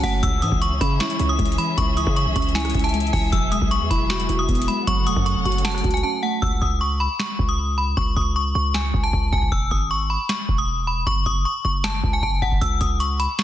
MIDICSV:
0, 0, Header, 1, 6, 480
1, 0, Start_track
1, 0, Key_signature, 4, "minor"
1, 0, Tempo, 387097
1, 283, Time_signature, 4, 2, 24, 8
1, 16657, End_track
2, 0, Start_track
2, 0, Title_t, "Synth bell"
2, 0, Program_c, 0, 98
2, 44, Note_on_c, 0, 78, 74
2, 259, Note_off_c, 0, 78, 0
2, 283, Note_on_c, 0, 88, 107
2, 499, Note_off_c, 0, 88, 0
2, 523, Note_on_c, 0, 87, 73
2, 739, Note_off_c, 0, 87, 0
2, 764, Note_on_c, 0, 85, 84
2, 979, Note_off_c, 0, 85, 0
2, 1003, Note_on_c, 0, 83, 90
2, 1219, Note_off_c, 0, 83, 0
2, 1243, Note_on_c, 0, 85, 84
2, 1581, Note_off_c, 0, 85, 0
2, 1603, Note_on_c, 0, 87, 88
2, 1941, Note_off_c, 0, 87, 0
2, 1963, Note_on_c, 0, 83, 87
2, 2178, Note_off_c, 0, 83, 0
2, 2203, Note_on_c, 0, 85, 100
2, 2418, Note_off_c, 0, 85, 0
2, 2442, Note_on_c, 0, 87, 84
2, 2658, Note_off_c, 0, 87, 0
2, 2683, Note_on_c, 0, 85, 84
2, 2898, Note_off_c, 0, 85, 0
2, 2924, Note_on_c, 0, 85, 84
2, 3139, Note_off_c, 0, 85, 0
2, 3162, Note_on_c, 0, 80, 79
2, 3501, Note_off_c, 0, 80, 0
2, 3521, Note_on_c, 0, 81, 92
2, 3860, Note_off_c, 0, 81, 0
2, 3882, Note_on_c, 0, 80, 83
2, 4098, Note_off_c, 0, 80, 0
2, 4121, Note_on_c, 0, 88, 95
2, 4338, Note_off_c, 0, 88, 0
2, 4360, Note_on_c, 0, 87, 77
2, 4577, Note_off_c, 0, 87, 0
2, 4602, Note_on_c, 0, 85, 91
2, 4818, Note_off_c, 0, 85, 0
2, 4843, Note_on_c, 0, 83, 84
2, 5058, Note_off_c, 0, 83, 0
2, 5082, Note_on_c, 0, 85, 90
2, 5421, Note_off_c, 0, 85, 0
2, 5442, Note_on_c, 0, 87, 82
2, 5781, Note_off_c, 0, 87, 0
2, 5803, Note_on_c, 0, 83, 81
2, 6019, Note_off_c, 0, 83, 0
2, 6044, Note_on_c, 0, 85, 111
2, 6259, Note_off_c, 0, 85, 0
2, 6282, Note_on_c, 0, 87, 91
2, 6498, Note_off_c, 0, 87, 0
2, 6522, Note_on_c, 0, 85, 85
2, 6738, Note_off_c, 0, 85, 0
2, 6764, Note_on_c, 0, 85, 82
2, 6979, Note_off_c, 0, 85, 0
2, 7002, Note_on_c, 0, 81, 90
2, 7341, Note_off_c, 0, 81, 0
2, 7363, Note_on_c, 0, 80, 87
2, 7471, Note_off_c, 0, 80, 0
2, 7482, Note_on_c, 0, 81, 83
2, 7698, Note_off_c, 0, 81, 0
2, 7722, Note_on_c, 0, 78, 78
2, 7938, Note_off_c, 0, 78, 0
2, 7962, Note_on_c, 0, 88, 102
2, 8178, Note_off_c, 0, 88, 0
2, 8204, Note_on_c, 0, 87, 69
2, 8419, Note_off_c, 0, 87, 0
2, 8443, Note_on_c, 0, 85, 80
2, 8659, Note_off_c, 0, 85, 0
2, 8682, Note_on_c, 0, 83, 89
2, 8898, Note_off_c, 0, 83, 0
2, 8923, Note_on_c, 0, 85, 79
2, 9261, Note_off_c, 0, 85, 0
2, 9283, Note_on_c, 0, 87, 87
2, 9622, Note_off_c, 0, 87, 0
2, 9644, Note_on_c, 0, 83, 80
2, 9859, Note_off_c, 0, 83, 0
2, 9884, Note_on_c, 0, 85, 93
2, 10099, Note_off_c, 0, 85, 0
2, 10124, Note_on_c, 0, 87, 81
2, 10339, Note_off_c, 0, 87, 0
2, 10365, Note_on_c, 0, 85, 84
2, 10580, Note_off_c, 0, 85, 0
2, 10604, Note_on_c, 0, 85, 82
2, 10819, Note_off_c, 0, 85, 0
2, 10843, Note_on_c, 0, 80, 76
2, 11182, Note_off_c, 0, 80, 0
2, 11203, Note_on_c, 0, 81, 93
2, 11542, Note_off_c, 0, 81, 0
2, 11563, Note_on_c, 0, 80, 82
2, 11779, Note_off_c, 0, 80, 0
2, 11804, Note_on_c, 0, 88, 95
2, 12019, Note_off_c, 0, 88, 0
2, 12042, Note_on_c, 0, 87, 75
2, 12258, Note_off_c, 0, 87, 0
2, 12285, Note_on_c, 0, 85, 89
2, 12500, Note_off_c, 0, 85, 0
2, 12523, Note_on_c, 0, 83, 77
2, 12739, Note_off_c, 0, 83, 0
2, 12764, Note_on_c, 0, 85, 85
2, 13102, Note_off_c, 0, 85, 0
2, 13124, Note_on_c, 0, 87, 80
2, 13462, Note_off_c, 0, 87, 0
2, 13483, Note_on_c, 0, 83, 76
2, 13698, Note_off_c, 0, 83, 0
2, 13723, Note_on_c, 0, 85, 114
2, 13939, Note_off_c, 0, 85, 0
2, 13963, Note_on_c, 0, 87, 90
2, 14178, Note_off_c, 0, 87, 0
2, 14201, Note_on_c, 0, 85, 81
2, 14418, Note_off_c, 0, 85, 0
2, 14442, Note_on_c, 0, 85, 82
2, 14658, Note_off_c, 0, 85, 0
2, 14683, Note_on_c, 0, 81, 89
2, 15021, Note_off_c, 0, 81, 0
2, 15044, Note_on_c, 0, 80, 84
2, 15151, Note_off_c, 0, 80, 0
2, 15163, Note_on_c, 0, 81, 80
2, 15378, Note_off_c, 0, 81, 0
2, 15402, Note_on_c, 0, 78, 72
2, 15618, Note_off_c, 0, 78, 0
2, 15641, Note_on_c, 0, 88, 99
2, 15857, Note_off_c, 0, 88, 0
2, 15882, Note_on_c, 0, 87, 69
2, 16098, Note_off_c, 0, 87, 0
2, 16121, Note_on_c, 0, 85, 81
2, 16337, Note_off_c, 0, 85, 0
2, 16362, Note_on_c, 0, 83, 85
2, 16578, Note_off_c, 0, 83, 0
2, 16601, Note_on_c, 0, 85, 79
2, 16657, Note_off_c, 0, 85, 0
2, 16657, End_track
3, 0, Start_track
3, 0, Title_t, "String section"
3, 0, Program_c, 1, 48
3, 0, Note_on_c, 1, 54, 89
3, 0, Note_on_c, 1, 61, 78
3, 0, Note_on_c, 1, 69, 79
3, 0, Note_on_c, 1, 78, 97
3, 245, Note_off_c, 1, 54, 0
3, 264, Note_off_c, 1, 69, 0
3, 264, Note_off_c, 1, 78, 0
3, 282, Note_on_c, 1, 52, 83
3, 282, Note_on_c, 1, 76, 97
3, 283, Note_on_c, 1, 68, 78
3, 4074, Note_off_c, 1, 61, 0
3, 4084, Note_off_c, 1, 52, 0
3, 4123, Note_on_c, 1, 54, 87
3, 4123, Note_on_c, 1, 59, 76
3, 5993, Note_off_c, 1, 68, 0
3, 5993, Note_off_c, 1, 76, 0
3, 6024, Note_off_c, 1, 59, 0
3, 6044, Note_on_c, 1, 61, 78
3, 6045, Note_on_c, 1, 69, 79
3, 6045, Note_on_c, 1, 78, 96
3, 7925, Note_off_c, 1, 54, 0
3, 7944, Note_off_c, 1, 61, 0
3, 7945, Note_off_c, 1, 69, 0
3, 7945, Note_off_c, 1, 78, 0
3, 16657, End_track
4, 0, Start_track
4, 0, Title_t, "Synth keys"
4, 0, Program_c, 2, 88
4, 0, Control_c, 2, 64, 127
4, 0, Note_on_c, 2, 54, 95
4, 0, Note_on_c, 2, 57, 83
4, 0, Note_on_c, 2, 61, 93
4, 0, Note_on_c, 2, 66, 96
4, 0, Note_on_c, 2, 78, 103
4, 47, Note_off_c, 2, 57, 0
4, 47, Note_on_c, 2, 57, 81
4, 281, Note_on_c, 2, 49, 88
4, 282, Note_off_c, 2, 61, 0
4, 284, Note_off_c, 2, 66, 0
4, 285, Note_off_c, 2, 57, 0
4, 286, Note_off_c, 2, 78, 0
4, 298, Control_c, 2, 64, 0
4, 306, Note_off_c, 2, 54, 0
4, 510, Control_c, 2, 64, 127
4, 530, Note_on_c, 2, 52, 84
4, 1002, Note_on_c, 2, 61, 89
4, 1243, Note_on_c, 2, 64, 103
4, 1469, Note_off_c, 2, 61, 0
4, 1482, Note_off_c, 2, 49, 0
4, 1484, Note_on_c, 2, 61, 85
4, 1724, Note_on_c, 2, 56, 91
4, 1727, Note_off_c, 2, 52, 0
4, 1962, Note_on_c, 2, 52, 81
4, 2200, Note_on_c, 2, 49, 92
4, 2423, Note_off_c, 2, 52, 0
4, 2438, Note_on_c, 2, 52, 85
4, 2443, Note_off_c, 2, 64, 0
4, 2684, Note_off_c, 2, 61, 0
4, 2924, Note_off_c, 2, 56, 0
4, 2927, Note_on_c, 2, 61, 99
4, 3162, Note_on_c, 2, 64, 106
4, 3391, Note_off_c, 2, 61, 0
4, 3402, Note_off_c, 2, 49, 0
4, 3406, Note_on_c, 2, 61, 86
4, 3640, Note_off_c, 2, 52, 0
4, 3645, Note_on_c, 2, 56, 88
4, 3881, Note_on_c, 2, 52, 76
4, 4122, Note_off_c, 2, 52, 0
4, 4122, Note_on_c, 2, 54, 93
4, 4123, Note_off_c, 2, 64, 0
4, 4124, Note_off_c, 2, 56, 0
4, 4124, Note_off_c, 2, 61, 0
4, 4139, Control_c, 2, 64, 0
4, 4331, Control_c, 2, 64, 127
4, 4359, Note_on_c, 2, 56, 84
4, 4839, Note_on_c, 2, 64, 92
4, 5085, Note_on_c, 2, 66, 103
4, 5305, Note_off_c, 2, 64, 0
4, 5320, Note_on_c, 2, 64, 86
4, 5322, Note_off_c, 2, 54, 0
4, 5561, Note_off_c, 2, 56, 0
4, 5566, Note_on_c, 2, 59, 93
4, 5804, Note_on_c, 2, 56, 75
4, 6041, Note_on_c, 2, 54, 98
4, 6042, Note_off_c, 2, 64, 0
4, 6044, Note_off_c, 2, 56, 0
4, 6044, Note_off_c, 2, 66, 0
4, 6045, Note_off_c, 2, 59, 0
4, 6062, Control_c, 2, 64, 0
4, 6283, Note_on_c, 2, 57, 84
4, 6284, Control_c, 2, 64, 127
4, 6763, Note_on_c, 2, 66, 91
4, 7008, Note_on_c, 2, 78, 101
4, 7230, Note_off_c, 2, 66, 0
4, 7242, Note_off_c, 2, 54, 0
4, 7245, Note_on_c, 2, 66, 94
4, 7483, Note_off_c, 2, 57, 0
4, 7483, Note_on_c, 2, 61, 88
4, 7726, Note_on_c, 2, 57, 82
4, 7963, Note_off_c, 2, 61, 0
4, 7964, Note_off_c, 2, 66, 0
4, 7965, Note_off_c, 2, 57, 0
4, 7966, Note_off_c, 2, 78, 0
4, 7981, Control_c, 2, 64, 0
4, 8214, Control_c, 2, 64, 127
4, 11821, Control_c, 2, 64, 0
4, 16657, End_track
5, 0, Start_track
5, 0, Title_t, "808-style bass"
5, 0, Program_c, 3, 38
5, 43, Note_on_c, 3, 30, 105
5, 274, Note_off_c, 3, 30, 0
5, 283, Note_on_c, 3, 37, 107
5, 523, Note_on_c, 3, 44, 104
5, 542, Note_off_c, 3, 37, 0
5, 637, Note_off_c, 3, 44, 0
5, 644, Note_on_c, 3, 37, 101
5, 989, Note_off_c, 3, 37, 0
5, 1003, Note_on_c, 3, 49, 106
5, 1234, Note_off_c, 3, 49, 0
5, 1484, Note_on_c, 3, 37, 105
5, 1714, Note_off_c, 3, 37, 0
5, 1723, Note_on_c, 3, 37, 105
5, 1954, Note_off_c, 3, 37, 0
5, 2203, Note_on_c, 3, 37, 111
5, 2549, Note_off_c, 3, 37, 0
5, 2564, Note_on_c, 3, 49, 108
5, 2804, Note_on_c, 3, 35, 99
5, 2822, Note_off_c, 3, 49, 0
5, 2917, Note_off_c, 3, 35, 0
5, 2923, Note_on_c, 3, 37, 108
5, 3384, Note_off_c, 3, 37, 0
5, 3404, Note_on_c, 3, 37, 105
5, 3864, Note_off_c, 3, 37, 0
5, 3883, Note_on_c, 3, 37, 108
5, 4113, Note_off_c, 3, 37, 0
5, 4123, Note_on_c, 3, 28, 112
5, 4469, Note_off_c, 3, 28, 0
5, 4484, Note_on_c, 3, 35, 106
5, 4724, Note_on_c, 3, 40, 100
5, 4743, Note_off_c, 3, 35, 0
5, 4838, Note_off_c, 3, 40, 0
5, 4843, Note_on_c, 3, 28, 107
5, 5304, Note_off_c, 3, 28, 0
5, 5323, Note_on_c, 3, 28, 106
5, 5553, Note_off_c, 3, 28, 0
5, 5564, Note_on_c, 3, 28, 111
5, 5794, Note_off_c, 3, 28, 0
5, 6044, Note_on_c, 3, 30, 110
5, 6284, Note_on_c, 3, 28, 102
5, 6302, Note_off_c, 3, 30, 0
5, 6398, Note_off_c, 3, 28, 0
5, 6404, Note_on_c, 3, 42, 106
5, 6644, Note_on_c, 3, 28, 99
5, 6663, Note_off_c, 3, 42, 0
5, 6758, Note_off_c, 3, 28, 0
5, 6764, Note_on_c, 3, 30, 105
5, 7224, Note_off_c, 3, 30, 0
5, 7245, Note_on_c, 3, 37, 106
5, 7474, Note_off_c, 3, 37, 0
5, 7964, Note_on_c, 3, 37, 108
5, 8194, Note_off_c, 3, 37, 0
5, 8204, Note_on_c, 3, 37, 105
5, 8780, Note_off_c, 3, 37, 0
5, 9165, Note_on_c, 3, 37, 105
5, 9855, Note_off_c, 3, 37, 0
5, 9884, Note_on_c, 3, 37, 108
5, 10114, Note_off_c, 3, 37, 0
5, 10124, Note_on_c, 3, 37, 108
5, 10585, Note_off_c, 3, 37, 0
5, 10604, Note_on_c, 3, 37, 106
5, 11064, Note_off_c, 3, 37, 0
5, 11084, Note_on_c, 3, 37, 105
5, 11314, Note_off_c, 3, 37, 0
5, 11324, Note_on_c, 3, 37, 111
5, 11554, Note_off_c, 3, 37, 0
5, 11564, Note_on_c, 3, 37, 106
5, 11794, Note_off_c, 3, 37, 0
5, 11804, Note_on_c, 3, 28, 111
5, 12034, Note_off_c, 3, 28, 0
5, 12045, Note_on_c, 3, 32, 107
5, 12620, Note_off_c, 3, 32, 0
5, 13004, Note_on_c, 3, 28, 105
5, 13695, Note_off_c, 3, 28, 0
5, 13723, Note_on_c, 3, 30, 111
5, 13953, Note_off_c, 3, 30, 0
5, 13963, Note_on_c, 3, 30, 102
5, 14194, Note_off_c, 3, 30, 0
5, 14443, Note_on_c, 3, 30, 107
5, 14904, Note_off_c, 3, 30, 0
5, 14923, Note_on_c, 3, 37, 107
5, 15154, Note_off_c, 3, 37, 0
5, 15163, Note_on_c, 3, 30, 106
5, 15393, Note_off_c, 3, 30, 0
5, 15402, Note_on_c, 3, 30, 107
5, 15633, Note_off_c, 3, 30, 0
5, 15642, Note_on_c, 3, 37, 112
5, 15873, Note_off_c, 3, 37, 0
5, 15883, Note_on_c, 3, 37, 108
5, 16459, Note_off_c, 3, 37, 0
5, 16657, End_track
6, 0, Start_track
6, 0, Title_t, "Drums"
6, 43, Note_on_c, 9, 36, 101
6, 43, Note_on_c, 9, 46, 77
6, 167, Note_off_c, 9, 36, 0
6, 167, Note_off_c, 9, 46, 0
6, 283, Note_on_c, 9, 36, 125
6, 284, Note_on_c, 9, 42, 93
6, 407, Note_off_c, 9, 36, 0
6, 408, Note_off_c, 9, 42, 0
6, 522, Note_on_c, 9, 42, 81
6, 644, Note_on_c, 9, 36, 97
6, 646, Note_off_c, 9, 42, 0
6, 763, Note_on_c, 9, 42, 75
6, 768, Note_off_c, 9, 36, 0
6, 887, Note_off_c, 9, 42, 0
6, 1003, Note_on_c, 9, 36, 100
6, 1006, Note_on_c, 9, 42, 81
6, 1127, Note_off_c, 9, 36, 0
6, 1130, Note_off_c, 9, 42, 0
6, 1242, Note_on_c, 9, 38, 113
6, 1243, Note_on_c, 9, 42, 50
6, 1251, Note_on_c, 9, 26, 86
6, 1363, Note_off_c, 9, 42, 0
6, 1363, Note_on_c, 9, 42, 81
6, 1366, Note_off_c, 9, 38, 0
6, 1375, Note_off_c, 9, 26, 0
6, 1481, Note_off_c, 9, 42, 0
6, 1481, Note_on_c, 9, 42, 76
6, 1605, Note_off_c, 9, 42, 0
6, 1723, Note_on_c, 9, 42, 47
6, 1724, Note_on_c, 9, 36, 93
6, 1803, Note_off_c, 9, 42, 0
6, 1803, Note_on_c, 9, 42, 62
6, 1848, Note_off_c, 9, 36, 0
6, 1883, Note_off_c, 9, 42, 0
6, 1883, Note_on_c, 9, 42, 74
6, 1964, Note_off_c, 9, 42, 0
6, 1964, Note_on_c, 9, 42, 73
6, 2088, Note_off_c, 9, 42, 0
6, 2203, Note_on_c, 9, 36, 122
6, 2203, Note_on_c, 9, 42, 89
6, 2327, Note_off_c, 9, 36, 0
6, 2327, Note_off_c, 9, 42, 0
6, 2442, Note_on_c, 9, 42, 75
6, 2564, Note_on_c, 9, 36, 102
6, 2566, Note_off_c, 9, 42, 0
6, 2684, Note_on_c, 9, 42, 76
6, 2688, Note_off_c, 9, 36, 0
6, 2808, Note_off_c, 9, 42, 0
6, 2923, Note_on_c, 9, 36, 99
6, 2923, Note_on_c, 9, 42, 81
6, 3003, Note_off_c, 9, 42, 0
6, 3003, Note_on_c, 9, 42, 65
6, 3047, Note_off_c, 9, 36, 0
6, 3083, Note_off_c, 9, 42, 0
6, 3083, Note_on_c, 9, 42, 45
6, 3162, Note_on_c, 9, 38, 109
6, 3163, Note_off_c, 9, 42, 0
6, 3163, Note_on_c, 9, 42, 51
6, 3171, Note_on_c, 9, 26, 87
6, 3224, Note_off_c, 9, 42, 0
6, 3224, Note_on_c, 9, 42, 61
6, 3284, Note_off_c, 9, 42, 0
6, 3284, Note_on_c, 9, 37, 94
6, 3284, Note_on_c, 9, 42, 73
6, 3286, Note_off_c, 9, 38, 0
6, 3295, Note_off_c, 9, 26, 0
6, 3343, Note_off_c, 9, 42, 0
6, 3343, Note_on_c, 9, 42, 86
6, 3404, Note_off_c, 9, 42, 0
6, 3404, Note_on_c, 9, 36, 102
6, 3404, Note_on_c, 9, 42, 62
6, 3408, Note_off_c, 9, 37, 0
6, 3464, Note_off_c, 9, 42, 0
6, 3464, Note_on_c, 9, 42, 64
6, 3524, Note_off_c, 9, 42, 0
6, 3524, Note_on_c, 9, 42, 67
6, 3528, Note_off_c, 9, 36, 0
6, 3583, Note_off_c, 9, 42, 0
6, 3583, Note_on_c, 9, 42, 67
6, 3644, Note_off_c, 9, 42, 0
6, 3644, Note_on_c, 9, 42, 77
6, 3724, Note_off_c, 9, 42, 0
6, 3724, Note_on_c, 9, 42, 60
6, 3804, Note_off_c, 9, 42, 0
6, 3804, Note_on_c, 9, 42, 44
6, 3883, Note_on_c, 9, 36, 99
6, 3883, Note_on_c, 9, 46, 74
6, 3928, Note_off_c, 9, 42, 0
6, 4007, Note_off_c, 9, 36, 0
6, 4007, Note_off_c, 9, 46, 0
6, 4123, Note_on_c, 9, 36, 127
6, 4124, Note_on_c, 9, 42, 89
6, 4247, Note_off_c, 9, 36, 0
6, 4248, Note_off_c, 9, 42, 0
6, 4362, Note_on_c, 9, 42, 80
6, 4484, Note_on_c, 9, 36, 104
6, 4486, Note_off_c, 9, 42, 0
6, 4603, Note_on_c, 9, 42, 77
6, 4608, Note_off_c, 9, 36, 0
6, 4727, Note_off_c, 9, 42, 0
6, 4843, Note_on_c, 9, 36, 98
6, 4845, Note_on_c, 9, 42, 81
6, 4967, Note_off_c, 9, 36, 0
6, 4969, Note_off_c, 9, 42, 0
6, 5082, Note_on_c, 9, 38, 108
6, 5083, Note_on_c, 9, 42, 51
6, 5091, Note_on_c, 9, 26, 87
6, 5204, Note_off_c, 9, 42, 0
6, 5204, Note_on_c, 9, 42, 84
6, 5206, Note_off_c, 9, 38, 0
6, 5215, Note_off_c, 9, 26, 0
6, 5321, Note_off_c, 9, 42, 0
6, 5321, Note_on_c, 9, 42, 75
6, 5445, Note_off_c, 9, 42, 0
6, 5564, Note_on_c, 9, 36, 92
6, 5564, Note_on_c, 9, 42, 46
6, 5644, Note_off_c, 9, 42, 0
6, 5644, Note_on_c, 9, 42, 61
6, 5688, Note_off_c, 9, 36, 0
6, 5724, Note_off_c, 9, 42, 0
6, 5724, Note_on_c, 9, 42, 75
6, 5804, Note_off_c, 9, 42, 0
6, 5804, Note_on_c, 9, 42, 72
6, 5928, Note_off_c, 9, 42, 0
6, 6044, Note_on_c, 9, 36, 127
6, 6044, Note_on_c, 9, 42, 90
6, 6168, Note_off_c, 9, 36, 0
6, 6168, Note_off_c, 9, 42, 0
6, 6282, Note_on_c, 9, 42, 76
6, 6404, Note_on_c, 9, 36, 100
6, 6406, Note_off_c, 9, 42, 0
6, 6524, Note_on_c, 9, 42, 78
6, 6528, Note_off_c, 9, 36, 0
6, 6648, Note_off_c, 9, 42, 0
6, 6764, Note_on_c, 9, 36, 98
6, 6764, Note_on_c, 9, 42, 50
6, 6844, Note_off_c, 9, 42, 0
6, 6844, Note_on_c, 9, 42, 65
6, 6888, Note_off_c, 9, 36, 0
6, 6924, Note_off_c, 9, 42, 0
6, 6924, Note_on_c, 9, 42, 81
6, 7002, Note_on_c, 9, 38, 110
6, 7003, Note_off_c, 9, 42, 0
6, 7003, Note_on_c, 9, 42, 68
6, 7011, Note_on_c, 9, 26, 87
6, 7083, Note_off_c, 9, 42, 0
6, 7083, Note_on_c, 9, 42, 69
6, 7124, Note_on_c, 9, 37, 93
6, 7126, Note_off_c, 9, 38, 0
6, 7135, Note_off_c, 9, 26, 0
6, 7163, Note_off_c, 9, 42, 0
6, 7163, Note_on_c, 9, 42, 66
6, 7243, Note_off_c, 9, 42, 0
6, 7243, Note_on_c, 9, 42, 48
6, 7244, Note_on_c, 9, 36, 97
6, 7248, Note_off_c, 9, 37, 0
6, 7324, Note_off_c, 9, 42, 0
6, 7324, Note_on_c, 9, 42, 62
6, 7368, Note_off_c, 9, 36, 0
6, 7404, Note_off_c, 9, 42, 0
6, 7404, Note_on_c, 9, 42, 80
6, 7528, Note_off_c, 9, 42, 0
6, 7963, Note_on_c, 9, 36, 118
6, 8087, Note_off_c, 9, 36, 0
6, 8204, Note_on_c, 9, 36, 82
6, 8328, Note_off_c, 9, 36, 0
6, 8922, Note_on_c, 9, 38, 106
6, 8931, Note_on_c, 9, 26, 84
6, 9046, Note_off_c, 9, 38, 0
6, 9055, Note_off_c, 9, 26, 0
6, 9164, Note_on_c, 9, 36, 98
6, 9288, Note_off_c, 9, 36, 0
6, 9884, Note_on_c, 9, 36, 124
6, 10008, Note_off_c, 9, 36, 0
6, 10124, Note_on_c, 9, 36, 85
6, 10248, Note_off_c, 9, 36, 0
6, 10843, Note_on_c, 9, 38, 111
6, 10851, Note_on_c, 9, 26, 86
6, 10967, Note_off_c, 9, 38, 0
6, 10975, Note_off_c, 9, 26, 0
6, 11085, Note_on_c, 9, 36, 98
6, 11209, Note_off_c, 9, 36, 0
6, 11324, Note_on_c, 9, 36, 92
6, 11448, Note_off_c, 9, 36, 0
6, 11563, Note_on_c, 9, 36, 99
6, 11685, Note_off_c, 9, 36, 0
6, 11685, Note_on_c, 9, 36, 100
6, 11804, Note_off_c, 9, 36, 0
6, 11804, Note_on_c, 9, 36, 123
6, 11928, Note_off_c, 9, 36, 0
6, 12044, Note_on_c, 9, 36, 82
6, 12168, Note_off_c, 9, 36, 0
6, 12763, Note_on_c, 9, 38, 107
6, 12771, Note_on_c, 9, 26, 88
6, 12887, Note_off_c, 9, 38, 0
6, 12895, Note_off_c, 9, 26, 0
6, 13004, Note_on_c, 9, 36, 98
6, 13128, Note_off_c, 9, 36, 0
6, 13723, Note_on_c, 9, 36, 122
6, 13847, Note_off_c, 9, 36, 0
6, 13964, Note_on_c, 9, 36, 86
6, 14088, Note_off_c, 9, 36, 0
6, 14681, Note_on_c, 9, 38, 103
6, 14690, Note_on_c, 9, 26, 85
6, 14805, Note_off_c, 9, 38, 0
6, 14814, Note_off_c, 9, 26, 0
6, 14923, Note_on_c, 9, 36, 92
6, 15047, Note_off_c, 9, 36, 0
6, 15163, Note_on_c, 9, 36, 92
6, 15287, Note_off_c, 9, 36, 0
6, 15402, Note_on_c, 9, 36, 102
6, 15523, Note_off_c, 9, 36, 0
6, 15523, Note_on_c, 9, 36, 101
6, 15642, Note_off_c, 9, 36, 0
6, 15642, Note_on_c, 9, 36, 118
6, 15643, Note_on_c, 9, 42, 86
6, 15766, Note_off_c, 9, 36, 0
6, 15767, Note_off_c, 9, 42, 0
6, 15880, Note_on_c, 9, 42, 80
6, 15883, Note_on_c, 9, 36, 86
6, 16004, Note_off_c, 9, 42, 0
6, 16007, Note_off_c, 9, 36, 0
6, 16123, Note_on_c, 9, 42, 74
6, 16247, Note_off_c, 9, 42, 0
6, 16363, Note_on_c, 9, 42, 78
6, 16487, Note_off_c, 9, 42, 0
6, 16599, Note_on_c, 9, 42, 76
6, 16601, Note_on_c, 9, 38, 105
6, 16609, Note_on_c, 9, 26, 85
6, 16657, Note_off_c, 9, 26, 0
6, 16657, Note_off_c, 9, 38, 0
6, 16657, Note_off_c, 9, 42, 0
6, 16657, End_track
0, 0, End_of_file